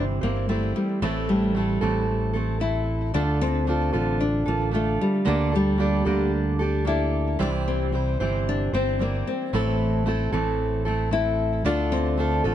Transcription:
Already playing: G1 C3 E3 G3 C4 E4 C5
0.21 G1 G3 A#3 C4 E4 C5
0.49 G3 A3 C4 E4 C5
0.76 G3
1.02 A1 A2 E3 A3 C4 E4 A4
1.29 G3
1.55 A3 C4 E4 A4
1.81 A1 A2 E3 A3 C4 E4 A4
2.33 A3 C4 E4 A4
2.60 A3 C4 E4 A4
3.14 D2 D3 A3 D4 F4 A4
3.41 C4 D4 F4 A4
3.67 A3 D4 F4 A4
3.93 A1 D3 A3 D4 F4 A4
4.21 D4
4.46 A1 A#3 D4 F4 A4
4.71 A3 D4 F4 A4
5.01 G3
5.25 D2 D3 A3 A#3 D4 G4 A4
5.52 G3 D4 G4 A4
5.78 A#3 D4 G4 A4
6.05 D2 D3 A#3 D4 G4 A4
6.59 D4 G4 A4
6.85 A#3 D4 E4 G4 A4
7.39 C2 C3 E3 G3 C4 D4 E4 C5
7.68 C4
7.92 G3 C4 E4 C5
8.20 G1 C3 E3 G3 C4 E4 C5
8.49 D4
8.73 G1 G3 C4 E4 C5
8.99 G3 A#3 C4 E4 C5
9.27 C4
9.53 A1 A2 E3 A3 C4 E4 A4
10.06 A3 C4 E4 A4
10.32 A1 A2 E3 A3 C4 E4 A4
10.85 A3 C4 E4 A4
11.11 A3 C4 E4 A4
11.64 D2 D3 A3 D4 F4 A4
11.92 C4
12.17 A3 D4 F4 A4
12.44 A1 D3 A3 D4 F4 A4

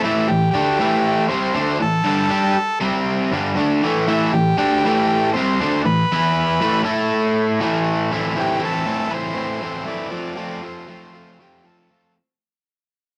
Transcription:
0.04 A2 E3 A3 E4
0.27 A2 E3 G4
0.51 D3 D4 G4
0.55 A3
0.79 A2 E3 A3
1.28 C3 G3 C4 C5
1.55 D3 A3 D4
1.81 A2 E3 A4
2.05 G2 D3 G3
2.30 G3 D4 G4
2.54 muted overdriven electric guitar stroke
2.80 C3 G3 C4
3.31 G2 D3 G3
3.55 D3 A3 D4
3.82 A2 E3 A3
4.08 A2 E3 A3 E4
4.33 A2 E3 G4
4.58 D3 A3 D4 G4
4.85 A2 E3 A3
5.33 C3 G3 C4 C5
5.61 D3 A3 D4
5.84 A2 E3 B4
6.12 E3 B3 E4
6.61 A2 E3 A3
6.85 A3 E4 A4
7.60 A2 E3 A3
8.12 A2 E3 A3 C4 E4
8.36 A2 E3 A3 C4 E4 G4
8.59 A2 E3 A3 C4 E4
8.64 A4
8.85 A2 E3 A3 C4 E4
9.08 A2 E3 A3 C4 E4 B4
9.14 C5
9.34 A2 E3 A3 C4 E4
9.61 A2 E3 A3 C4 E4
9.85 A2 E3 A3 C4 E4 D5
10.10 F3 A3 C4 F4
10.36 F3 A3 C4 F4
10.62 F3 A3 C4 F4 C5
10.88 F3 A3 C4 F4
11.14 F3 A3 C4 F4
11.39 F3 A3 C4 F4 G4
11.64 F3 A3 C4 F4 A4
11.91 F3 A3 C4 F4

